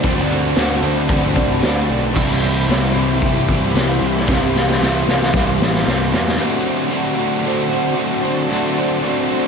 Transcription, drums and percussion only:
0.03 kick loud
0.03 open hi-hat medium
0.18 snare soft
0.30 open hi-hat medium
0.55 snare loud
0.55 open hi-hat medium
0.82 open hi-hat medium
1.08 kick loud
1.08 open hi-hat medium
1.36 kick medium
1.36 open hi-hat medium
1.62 snare loud
1.62 open hi-hat medium
1.89 open hi-hat medium
2.16 kick loud
2.16 crash loud
2.30 snare soft
2.43 open hi-hat medium
2.70 snare loud
2.70 open hi-hat medium
2.97 open hi-hat medium
3.22 kick loud
3.22 open hi-hat medium
3.49 kick medium
3.49 open hi-hat medium
3.75 snare loud
3.75 open hi-hat medium
4.02 open hi-hat medium
4.17 snare soft
4.28 kick loud
4.28 snare medium
4.56 snare medium
4.70 snare medium
4.83 snare medium
5.08 snare medium
5.22 snare medium
5.34 kick loud
5.34 snare medium
5.62 snare medium
5.75 snare medium
5.88 snare medium
6.14 snare medium
6.28 snare medium

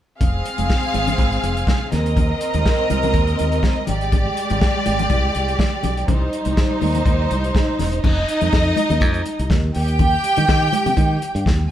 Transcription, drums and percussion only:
0.21 kick loud
0.21 closed hi-hat medium
0.21 muted conga soft
0.21 low conga medium
0.45 closed hi-hat medium
0.45 muted conga soft
0.58 closed hi-hat soft
0.58 high conga medium
0.70 kick loud
0.70 snare loud
0.70 muted conga soft
0.83 closed hi-hat soft
0.94 closed hi-hat medium
0.94 high conga medium
1.07 closed hi-hat soft
1.07 low conga medium
1.18 kick loud
1.18 closed hi-hat medium
1.18 muted conga soft
1.18 high conga medium
1.32 closed hi-hat soft
1.44 closed hi-hat soft
1.44 muted conga soft
1.44 high conga soft
1.57 closed hi-hat soft
1.67 kick loud
1.67 snare loud
1.67 high conga medium
1.92 snare soft
1.92 closed hi-hat medium
1.92 muted conga soft
1.92 low conga medium
2.06 closed hi-hat soft
2.17 kick loud
2.17 closed hi-hat medium
2.17 muted conga soft
2.17 low conga medium
2.41 closed hi-hat medium
2.54 closed hi-hat soft
2.54 high conga medium
2.66 kick loud
2.66 snare loud
2.90 closed hi-hat medium
2.90 muted conga soft
2.90 high conga medium
3.03 closed hi-hat soft
3.03 low conga medium
3.14 kick loud
3.14 closed hi-hat medium
3.14 muted conga soft
3.14 high conga medium
3.27 closed hi-hat soft
3.39 closed hi-hat medium
3.39 muted conga soft
3.39 high conga soft
3.52 closed hi-hat soft
3.63 kick loud
3.63 snare loud
3.63 muted conga soft
3.63 high conga medium
3.87 closed hi-hat medium
3.87 muted conga soft
3.87 low conga medium
4.01 closed hi-hat soft
4.12 kick loud
4.12 closed hi-hat medium
4.12 low conga medium
4.37 closed hi-hat medium
4.50 closed hi-hat soft
4.50 high conga medium
4.61 kick loud
4.61 snare loud
4.61 muted conga soft
4.86 closed hi-hat medium
4.86 muted conga soft
4.86 high conga medium
4.99 closed hi-hat soft
4.99 low conga medium
5.10 kick loud
5.10 closed hi-hat medium
5.10 high conga medium
5.35 closed hi-hat soft
5.35 high conga soft
5.48 closed hi-hat soft
5.59 kick medium
5.59 snare loud
5.59 high conga medium
5.83 closed hi-hat medium
5.83 muted conga soft
5.83 low conga medium
5.97 closed hi-hat soft
6.08 kick loud
6.08 closed hi-hat medium
6.08 muted conga soft
6.08 low conga medium
6.33 closed hi-hat medium
6.45 closed hi-hat soft
6.45 high conga medium
6.57 kick loud
6.57 snare loud
6.57 muted conga soft
6.81 open hi-hat medium
6.81 high conga medium
6.95 closed hi-hat soft
6.95 low conga medium
7.06 kick loud
7.06 closed hi-hat medium
7.06 high conga medium
7.31 closed hi-hat medium
7.31 muted conga soft
7.31 high conga soft
7.44 closed hi-hat soft
7.55 kick loud
7.55 snare loud
7.55 high conga medium
7.79 snare soft
7.79 open hi-hat medium
7.79 low conga medium
7.93 closed hi-hat soft
8.04 kick loud
8.04 crash medium
8.04 muted conga soft
8.04 low conga medium
8.29 closed hi-hat medium
8.41 closed hi-hat soft
8.41 high conga medium
8.52 kick loud
8.52 snare loud
8.52 muted conga soft
8.76 closed hi-hat medium
8.76 muted conga soft
8.76 high conga medium
8.90 closed hi-hat soft
8.90 low conga medium
9.01 kick loud
9.01 closed hi-hat medium
9.01 muted conga soft
9.01 high conga medium
9.14 closed hi-hat soft
9.26 closed hi-hat medium
9.26 muted conga soft
9.39 closed hi-hat soft
9.50 kick loud
9.50 snare loud
9.50 muted conga soft
9.50 high conga medium
9.75 open hi-hat medium
9.88 closed hi-hat soft
9.99 kick loud
9.99 closed hi-hat medium
9.99 low conga medium
10.24 closed hi-hat medium
10.24 muted conga soft
10.37 closed hi-hat soft
10.37 high conga medium
10.49 kick loud
10.49 snare loud
10.49 muted conga soft
10.73 closed hi-hat medium
10.73 muted conga soft
10.73 high conga medium
10.86 closed hi-hat soft
10.86 low conga medium
10.97 kick loud
10.97 closed hi-hat medium
10.97 muted conga soft
10.97 high conga medium
11.22 closed hi-hat medium
11.22 muted conga soft
11.36 closed hi-hat soft
11.46 kick loud
11.46 snare loud
11.46 high conga medium

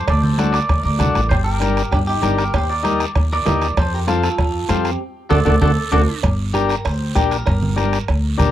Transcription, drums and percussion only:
0.08 bombo low medium
0.08 bombo rim medium
0.08 cowbell medium
0.08 long guiro medium
0.23 low conga medium
0.38 bombo rim medium
0.38 cowbell medium
0.38 high conga medium
0.38 short guiro medium
0.54 bombo rim medium
0.54 short guiro medium
0.69 bombo low medium
0.69 bombo rim medium
0.69 cowbell medium
0.69 high conga soft
0.69 long guiro medium
1.00 bombo low medium
1.00 bombo rim medium
1.00 cowbell medium
1.00 high conga medium
1.00 low conga medium
1.00 short guiro medium
1.15 bombo rim medium
1.15 short guiro medium
1.31 bombo low medium
1.31 bombo rim medium
1.31 cowbell medium
1.31 high conga soft
1.31 long guiro medium
1.61 bombo rim medium
1.61 cowbell medium
1.61 high conga medium
1.61 short guiro medium
1.77 bombo rim medium
1.77 short guiro medium
1.92 bombo low medium
1.92 bombo rim medium
1.92 cowbell medium
1.92 high conga soft
1.92 long guiro medium
2.23 bombo rim medium
2.23 cowbell medium
2.23 high conga medium
2.23 short guiro medium
2.39 bombo rim medium
2.39 short guiro medium
2.54 bombo low medium
2.54 bombo rim medium
2.54 cowbell loud
2.54 long guiro medium
2.85 bombo rim medium
2.85 cowbell medium
2.85 high conga medium
2.85 short guiro medium
3.00 bombo rim medium
3.00 short guiro medium
3.15 bombo low medium
3.15 bombo rim medium
3.15 cowbell medium
3.15 high conga soft
3.15 long guiro medium
3.46 bombo rim medium
3.46 cowbell medium
3.46 high conga medium
3.46 low conga medium
3.46 low timbale medium
3.46 short guiro medium
3.61 bombo rim medium
3.61 short guiro medium
3.77 bombo low medium
3.77 bombo rim medium
3.77 cowbell loud
3.77 high conga soft
3.77 long guiro medium
4.08 bombo rim medium
4.08 cowbell medium
4.08 high conga medium
4.08 short guiro medium
4.23 bombo rim medium
4.23 short guiro medium
4.38 bombo low medium
4.38 bombo rim medium
4.38 cowbell medium
4.38 high conga soft
4.38 long guiro medium
4.69 bombo rim medium
4.69 cowbell medium
4.69 high conga medium
4.69 short guiro medium
4.85 bombo rim medium
4.85 short guiro medium
5.30 bombo low medium
5.30 low conga loud
5.30 high timbale loud
5.30 long guiro loud
5.46 bombo low loud
5.46 low conga loud
5.46 high timbale medium
5.46 long guiro loud
5.62 bombo low loud
5.62 low conga loud
5.62 high timbale loud
5.62 long guiro medium
5.92 bombo low medium
5.92 low conga medium
5.92 high timbale medium
5.92 long guiro loud
6.23 bombo low medium
6.23 bombo rim medium
6.23 cowbell loud
6.23 high conga soft
6.23 long guiro medium
6.54 bombo rim medium
6.54 high conga medium
6.54 short guiro medium
6.70 bombo rim medium
6.70 short guiro medium
6.85 bombo rim medium
6.85 cowbell medium
6.85 high conga soft
6.85 long guiro medium
7.16 bombo low medium
7.16 bombo rim medium
7.16 high conga medium
7.16 short guiro medium
7.31 bombo rim medium
7.31 short guiro medium
7.47 bombo low medium
7.47 bombo rim medium
7.47 cowbell medium
7.47 high conga soft
7.47 long guiro medium
7.62 low conga medium
7.78 bombo rim medium
7.78 high conga medium
7.78 short guiro medium
7.93 bombo rim medium
7.93 short guiro medium
8.08 bombo rim medium
8.08 cowbell medium
8.08 high conga soft
8.08 long guiro medium
8.40 bombo low medium
8.40 bombo rim medium
8.40 high conga medium
8.40 low conga medium
8.40 short guiro medium

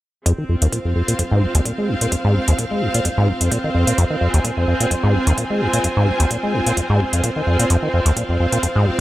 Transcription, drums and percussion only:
0.26 kick loud
0.26 closed hi-hat soft
0.62 closed hi-hat medium
0.72 kick loud
0.72 closed hi-hat soft
1.08 closed hi-hat medium
1.19 kick loud
1.19 closed hi-hat soft
1.55 closed hi-hat medium
1.65 kick loud
1.65 closed hi-hat soft
2.01 closed hi-hat medium
2.12 kick loud
2.12 closed hi-hat soft
2.48 closed hi-hat medium
2.59 kick loud
2.59 closed hi-hat soft
2.94 closed hi-hat medium
3.05 kick loud
3.05 closed hi-hat soft
3.28 kick medium
3.41 closed hi-hat medium
3.52 kick loud
3.52 closed hi-hat soft
3.87 closed hi-hat medium
3.98 kick loud
3.98 closed hi-hat soft
4.34 closed hi-hat medium
4.45 kick loud
4.45 closed hi-hat soft
4.80 closed hi-hat medium
4.91 kick loud
4.91 closed hi-hat soft
5.27 closed hi-hat medium
5.38 kick loud
5.38 closed hi-hat soft
5.73 closed hi-hat medium
5.84 kick loud
5.84 closed hi-hat soft
6.20 closed hi-hat medium
6.31 kick loud
6.31 closed hi-hat soft
6.66 closed hi-hat medium
6.77 kick loud
6.77 closed hi-hat soft
7.00 kick medium
7.13 closed hi-hat medium
7.24 kick loud
7.24 closed hi-hat soft
7.59 closed hi-hat medium
7.70 kick loud
7.70 closed hi-hat soft
8.06 closed hi-hat medium
8.17 kick loud
8.17 closed hi-hat soft
8.52 closed hi-hat medium
8.63 kick loud
8.63 closed hi-hat soft

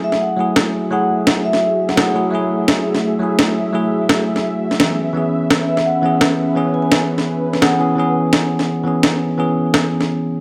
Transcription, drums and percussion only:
0.12 snare soft
0.56 snare loud
1.27 snare loud
1.53 snare soft
1.89 snare soft
1.97 snare loud
2.68 snare loud
2.95 snare soft
3.39 snare loud
4.09 snare loud
4.36 snare soft
4.71 snare soft
4.80 snare loud
5.50 snare loud
5.77 snare soft
6.21 snare loud
6.92 snare loud
7.18 snare soft
7.53 snare soft
7.62 snare loud
8.33 snare loud
8.59 snare soft
9.03 snare loud
9.74 snare loud
10.00 snare soft

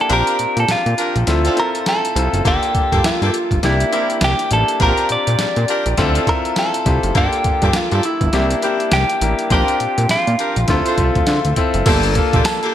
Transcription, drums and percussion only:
0.10 closed hi-hat medium
0.27 closed hi-hat medium
0.39 closed hi-hat medium
0.57 closed hi-hat medium
0.68 snare loud
0.68 closed hi-hat medium
0.86 closed hi-hat soft
0.98 closed hi-hat medium
1.16 closed hi-hat soft
1.27 snare medium
1.27 closed hi-hat medium
1.45 closed hi-hat medium
1.57 closed hi-hat medium
1.75 closed hi-hat soft
1.86 snare loud
1.86 closed hi-hat medium
2.05 closed hi-hat medium
2.16 closed hi-hat medium
2.34 closed hi-hat soft
2.45 kick loud
2.45 closed hi-hat medium
2.63 closed hi-hat soft
2.75 kick medium
2.75 closed hi-hat medium
2.92 kick loud
2.92 closed hi-hat medium
3.04 snare loud
3.04 closed hi-hat medium
3.22 closed hi-hat soft
3.34 closed hi-hat medium
3.51 kick medium
3.51 closed hi-hat soft
3.63 snare medium
3.63 closed hi-hat medium
3.80 closed hi-hat medium
3.93 closed hi-hat medium
4.10 closed hi-hat soft
4.21 snare loud
4.21 closed hi-hat medium
4.39 closed hi-hat medium
4.51 closed hi-hat medium
4.68 closed hi-hat soft
4.80 kick loud
4.80 closed hi-hat medium
4.97 closed hi-hat soft
5.09 closed hi-hat medium
5.27 closed hi-hat medium
5.39 snare loud
5.39 closed hi-hat medium
5.56 closed hi-hat soft
5.68 closed hi-hat medium
5.86 closed hi-hat soft
5.97 kick loud
5.97 snare medium
5.97 closed hi-hat medium
6.15 closed hi-hat medium
6.27 kick medium
6.27 closed hi-hat medium
6.45 closed hi-hat soft
6.56 snare loud
6.56 closed hi-hat medium
6.74 closed hi-hat medium
6.86 kick medium
6.86 closed hi-hat medium
7.03 closed hi-hat medium
7.15 kick loud
7.15 closed hi-hat medium
7.33 closed hi-hat soft
7.44 kick medium
7.44 closed hi-hat medium
7.62 kick loud
7.62 closed hi-hat medium
7.73 snare loud
7.73 closed hi-hat medium
7.91 closed hi-hat soft
8.03 closed hi-hat medium
8.21 kick medium
8.21 closed hi-hat soft
8.33 snare medium
8.33 closed hi-hat medium
8.50 closed hi-hat medium
8.62 closed hi-hat medium
8.80 closed hi-hat soft
8.91 snare loud
8.91 closed hi-hat medium
9.10 closed hi-hat medium
9.21 closed hi-hat medium
9.39 closed hi-hat medium
9.50 kick loud
9.50 closed hi-hat medium
9.68 closed hi-hat soft
9.80 closed hi-hat medium
9.98 closed hi-hat medium
10.09 snare loud
10.09 closed hi-hat medium
10.27 closed hi-hat soft
10.39 closed hi-hat medium
10.56 closed hi-hat soft
10.68 kick medium
10.68 snare medium
10.68 closed hi-hat medium
10.86 closed hi-hat medium
10.98 kick medium
10.98 closed hi-hat medium
11.15 kick medium
11.15 closed hi-hat soft
11.27 snare loud
11.27 closed hi-hat medium
11.45 closed hi-hat medium
11.56 kick medium
11.56 closed hi-hat medium
11.74 closed hi-hat soft
11.86 kick loud
11.86 closed hi-hat medium
11.86 crash loud
11.86 tambourine medium
12.03 closed hi-hat soft
12.15 kick medium
12.15 closed hi-hat medium
12.33 kick loud
12.33 closed hi-hat medium
12.45 snare loud
12.45 closed hi-hat medium
12.45 tambourine medium
12.63 closed hi-hat soft

